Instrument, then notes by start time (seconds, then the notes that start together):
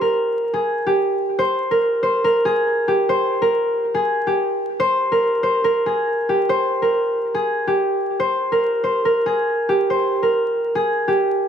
harp
Already playing: G4 C5
0.01 A#4
0.54 G#4
0.87 G4
1.39 C5
1.71 A#4
2.03 C5
2.24 A#4
2.45 G#4
2.88 G4
3.09 C5
3.42 A#4
3.94 G#4
4.27 G4
4.80 C5
5.12 A#4
5.43 C5
5.64 A#4
5.86 G#4
6.29 G4
6.49 C5
6.82 A#4
7.35 G#4
7.67 G4
8.20 C5
8.52 A#4
8.84 C5
9.05 A#4
9.26 G#4
9.69 G4
9.90 C5
10.23 A#4
10.75 G#4
11.08 G4